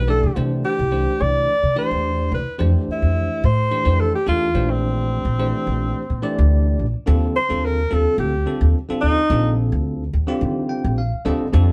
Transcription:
0.00 0.19 B1 medium
0.07 0.29 E3 medium
0.07 0.29 A3 medium
0.07 0.29 D4 medium
0.07 0.29 G4 medium
0.07 0.35 A4 medium
0.07 0.29 D5 medium
0.23 0.35 C3 medium
0.35 0.62 C3 medium
0.35 0.78 E3 medium
0.35 0.78 A3 medium
0.35 0.78 D4 medium
0.35 0.78 G4 medium
0.35 0.78 C5 medium
0.65 1.23 G4 medium
0.79 1.04 C2 medium
0.91 1.54 E3 medium
0.91 1.54 A3 medium
0.91 1.54 D4 medium
0.91 1.54 G4 medium
0.91 1.54 C5 medium
1.21 1.45 C2 medium
1.21 1.77 D5 loud
1.63 1.75 C3 medium
1.75 2.38 E3 medium
1.75 2.38 A3 medium
1.75 2.38 D4 medium
1.75 2.38 G4 medium
1.75 2.29 C5 medium
1.75 2.38 D5 medium
1.91 2.28 E2 medium
2.32 2.45 C2 medium
2.32 2.59 B4 medium
2.58 2.73 F2 medium
2.58 3.41 E3 medium
2.58 3.42 A3 medium
2.58 3.42 D4 medium
2.58 3.42 G4 medium
2.58 3.42 C5 medium
2.88 muted upright bass stroke soft
2.92 3.47 E4 medium
3.02 3.27 F2 medium
3.44 3.69 A2 medium
3.44 4.02 C5 loud
3.71 3.82 E3 medium
3.71 3.82 A3 medium
3.71 3.82 D4 medium
3.71 3.82 G4 medium
3.71 3.82 C5 medium
3.84 4.11 F2 medium
3.84 4.16 E3 medium
3.84 4.16 A3 medium
3.84 4.17 D4 medium
3.84 4.17 G4 medium
3.84 4.16 C5 medium
4.00 4.15 A4 medium
4.15 4.27 G4 medium
4.26 4.52 E2 medium
4.26 4.48 E3 medium
4.26 4.48 A3 medium
4.26 4.48 D4 medium
4.26 4.72 F4 medium
4.26 4.48 G4 medium
4.26 4.48 A4 medium
4.54 5.18 A#1 medium
4.54 5.22 E3 medium
4.54 5.23 A3 medium
4.54 5.23 D4 medium
4.54 5.23 G4 medium
4.54 5.23 C5 medium
4.70 6.79 C4 medium
5.25 5.50 A#1 medium
5.39 6.01 E3 medium
5.39 6.01 A3 medium
5.39 6.01 D4 medium
5.39 6.01 G4 medium
5.39 6.01 C5 medium
5.67 5.92 A#1 medium
6.10 6.21 A#2 medium
6.22 6.85 E3 medium
6.22 6.85 A3 medium
6.22 6.85 D4 medium
6.22 6.85 G4 medium
6.22 6.85 D5 medium
6.38 6.75 D2 medium
6.79 6.92 A#1 medium
7.06 7.32 D#2 loud
7.06 7.37 D3 medium
7.06 7.38 G3 medium
7.06 7.38 C4 medium
7.06 7.38 F4 medium
7.06 7.38 A4 medium
7.36 7.67 C5 medium
7.49 7.87 D#2 medium
7.49 7.80 D3 medium
7.49 7.80 G3 medium
7.49 7.80 C4 medium
7.49 7.80 F4 medium
7.49 7.80 A4 medium
7.65 7.95 A#4 medium
7.90 8.05 D#2 medium
7.90 8.32 D3 medium
7.90 8.32 G3 medium
7.90 8.32 C4 medium
7.90 8.32 F4 medium
7.90 8.32 A4 medium
7.90 8.19 A4 medium
8.18 8.43 D2 medium
8.18 8.71 G4 medium
8.46 8.77 D3 medium
8.46 8.77 G3 medium
8.46 8.77 C4 medium
8.46 8.77 F4 medium
8.46 8.78 A4 medium
8.61 8.73 D#2 medium
8.89 9.20 D3 medium
8.89 9.20 G3 medium
8.89 9.20 C4 medium
8.89 9.20 F4 medium
8.89 9.20 A4 medium
8.89 muted upright bass stroke soft
9.01 9.16 D#2 medium
9.01 9.54 D#4 loud
9.30 9.68 A#1 loud
9.30 10.03 D3 medium
9.30 10.03 G3 medium
9.30 10.03 C4 medium
9.30 10.03 F4 medium
9.30 10.03 A4 medium
9.72 10.09 D2 medium
10.13 10.27 D#2 medium
10.27 10.99 D3 medium
10.27 10.99 G3 medium
10.27 11.00 C4 medium
10.27 11.00 F4 medium
10.27 11.00 G4 medium
10.41 10.66 D#3 medium
10.69 10.95 G5 medium
10.84 11.09 A#1 medium
10.98 11.24 F5 medium
11.13 muted upright bass stroke soft
11.25 11.39 D#2 medium
11.25 11.46 D3 medium
11.25 11.46 G3 medium
11.25 11.46 C4 medium
11.25 11.47 F4 medium
11.25 11.47 A4 medium
11.25 11.52 D#5 medium
11.41 muted upright bass stroke soft
11.53 11.72 F2 loud
11.53 11.72 D3 medium
11.53 11.72 G3 medium
11.53 11.72 C4 medium
11.53 11.72 F4 medium
11.53 11.72 A4 medium

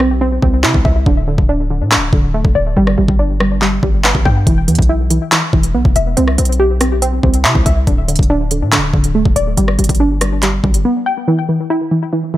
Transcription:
0.00 0.39 B1 loud
0.00 0.20 C4 medium
0.00 1.06 G4 medium
0.21 0.41 C4 medium
0.42 0.65 C2 loud
0.42 1.06 C4 medium
0.42 kick medium
0.63 0.74 C3 loud
0.63 1.06 E4 medium
0.63 clap loud
0.74 0.85 C2 loud
0.74 kick loud
0.85 1.05 C2 loud
0.85 1.06 E5 medium
0.85 kick medium
1.06 1.37 D1 loud
1.06 1.26 D3 medium
1.06 kick loud
1.27 1.69 D3 medium
1.38 1.82 D1 loud
1.38 kick medium
1.49 2.77 D4 medium
1.70 1.91 D3 medium
1.81 1.98 A2 loud
1.91 2.12 D3 medium
1.91 clap loud
1.97 2.12 D1 loud
2.13 2.43 D1 loud
2.13 2.77 D3 medium
2.13 kick medium
2.34 2.77 A3 medium
2.45 2.55 D1 loud
2.45 kick loud
2.55 2.76 D1 loud
2.55 2.76 D5 medium
2.77 2.97 G1 loud
2.77 2.97 G3 loud
2.87 cross-stick medium
2.98 3.08 G1 loud
2.98 3.39 G3 medium
3.08 3.80 G1 loud
3.08 kick medium
3.19 4.47 D4 medium
3.40 3.61 G3 medium
3.40 cross-stick medium
3.62 3.82 G3 medium
3.62 clap medium
3.83 4.14 G1 loud
3.83 4.47 G3 medium
3.83 kick medium
4.04 4.47 B3 medium
4.04 clap loud
4.15 4.25 G1 loud
4.15 kick loud
4.25 4.46 G2 loud
4.25 4.47 G5 medium
4.25 kick medium
4.47 4.70 E1 loud
4.47 4.67 E3 loud
4.47 kick loud
4.47 closed hi-hat medium
4.68 4.78 E2 loud
4.68 5.09 E3 medium
4.68 closed hi-hat medium
4.75 5.20 B1 loud
4.75 kick medium
4.75 closed hi-hat medium
4.82 closed hi-hat soft
4.89 6.17 E4 medium
5.10 5.31 E3 medium
5.10 closed hi-hat medium
5.32 5.52 E3 medium
5.32 clap loud
5.32 closed hi-hat medium
5.53 5.76 E1 loud
5.53 6.17 E3 medium
5.53 kick medium
5.63 closed hi-hat medium
5.74 5.84 B1 loud
5.74 6.17 B3 medium
5.85 5.95 E1 loud
5.85 kick loud
5.96 6.16 E1 loud
5.96 6.17 E5 medium
5.96 closed hi-hat medium
6.17 6.37 C2 loud
6.17 6.37 C4 medium
6.17 closed hi-hat medium
6.28 cross-stick medium
6.38 7.20 B1 loud
6.38 6.80 C4 medium
6.38 closed hi-hat medium
6.45 closed hi-hat medium
6.52 closed hi-hat soft
6.60 7.87 G4 medium
6.81 7.01 C4 medium
6.81 cross-stick medium
6.81 closed hi-hat medium
7.02 7.22 C4 loud
7.02 closed hi-hat medium
7.23 7.46 C2 loud
7.23 7.87 C4 medium
7.23 kick medium
7.34 closed hi-hat medium
7.44 7.55 C3 loud
7.44 7.87 E4 medium
7.44 clap loud
7.55 7.65 C2 loud
7.55 kick loud
7.66 7.86 C2 loud
7.66 7.87 E5 medium
7.66 kick medium
7.66 closed hi-hat medium
7.87 8.18 D1 loud
7.87 8.07 D3 medium
7.87 kick loud
7.87 closed hi-hat medium
8.08 8.50 D3 medium
8.08 closed hi-hat medium
8.16 8.63 D1 loud
8.16 kick loud
8.16 closed hi-hat medium
8.23 closed hi-hat soft
8.30 9.57 D4 medium
8.51 8.71 D3 medium
8.51 closed hi-hat medium
8.62 8.79 A2 loud
8.72 8.93 D3 medium
8.72 clap loud
8.72 closed hi-hat medium
8.78 8.93 D1 loud
8.94 9.24 D1 loud
8.94 9.58 D3 medium
8.94 kick medium
9.04 closed hi-hat medium
9.15 9.57 A3 medium
9.25 9.36 D1 loud
9.25 kick loud
9.36 9.57 D1 loud
9.36 9.57 D5 medium
9.36 closed hi-hat medium
9.57 9.78 G1 loud
9.57 9.77 G3 loud
9.57 closed hi-hat medium
9.68 cross-stick medium
9.79 9.89 G1 loud
9.79 10.20 G3 medium
9.79 closed hi-hat medium
9.84 closed hi-hat medium
9.89 10.61 G1 loud
9.89 kick medium
9.89 closed hi-hat medium
9.95 closed hi-hat medium
10.00 11.28 D4 medium
10.21 10.41 G3 medium
10.21 cross-stick medium
10.21 closed hi-hat medium
10.43 10.63 G3 medium
10.43 clap medium
10.43 closed hi-hat medium
10.64 10.84 G1 loud
10.64 11.28 G3 medium
10.64 kick medium
10.74 closed hi-hat medium
10.85 11.28 B3 medium
11.06 11.28 G5 medium
11.28 11.48 E3 loud
11.49 11.90 E3 medium
11.70 12.37 E4 loud
11.91 12.12 E3 medium
12.13 12.33 E3 medium
12.34 12.37 E3 medium

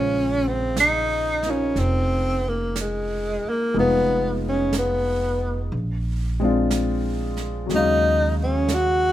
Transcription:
0.00 1.72 A#1 medium
0.00 3.77 C#3 soft
0.00 3.73 G#3 soft
0.00 0.50 C#4 medium
0.00 1.47 F4 soft
0.00 3.75 C5 soft
0.48 0.78 C4 medium
0.77 1.52 D#4 medium
0.77 brush sweep soft
0.77 snare soft
0.77 hi-hat pedal soft
1.43 3.75 A#3 soft
1.43 snare soft
1.48 1.81 C#4 medium
1.48 3.76 D#4 soft
1.48 3.77 F4 soft
1.76 3.40 F1 medium
1.76 2.50 C4 medium
1.76 brush sweep soft
1.76 snare soft
2.49 2.78 A#3 medium
2.76 brush sweep soft
2.76 snare soft
2.76 hi-hat pedal soft
2.81 3.51 G#3 medium
3.44 muted upright bass stroke soft
3.49 3.78 A#3 medium
3.74 5.68 F1 medium
3.74 5.72 G#3 soft
3.74 5.72 B3 soft
3.74 5.74 D#4 soft
3.74 brush sweep soft
3.78 4.41 B3 medium
3.78 5.74 F4 medium
4.49 4.75 C#4 medium
4.73 brush sweep soft
4.73 snare soft
4.73 hi-hat pedal soft
4.79 5.71 B3 medium
5.72 7.65 A#1 medium
5.72 brush sweep soft
6.40 7.69 G#3 medium
6.40 7.70 C4 medium
6.40 7.71 D4 medium
6.44 7.72 F4 medium
6.71 brush sweep soft
6.71 snare soft
6.71 hi-hat pedal soft
7.37 snare soft
7.66 9.12 D#2 medium
7.66 9.12 F#3 soft
7.66 9.12 G#3 soft
7.66 brush sweep soft
7.66 snare soft
7.74 9.12 C#3 soft
7.74 8.36 D#4 medium
7.74 9.12 F5 soft
8.43 8.76 C#4 medium
8.68 brush sweep soft
8.68 snare soft
8.68 hi-hat pedal soft
8.74 9.12 F#4 medium

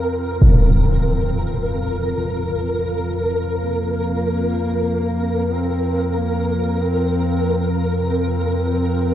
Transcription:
0.00 9.14 F2 medium
0.00 9.14 F3 medium
0.00 0.36 C4 medium
0.00 9.14 C4 medium
0.00 9.14 F4 medium
0.00 9.14 A#4 medium
0.00 9.14 F5 medium
0.40 2.28 C4 medium
0.40 impact medium
3.60 5.55 A#3 loud
5.53 6.19 C4 medium
6.18 6.83 A#3 medium
6.82 7.77 C4 medium
8.09 9.14 C4 loud

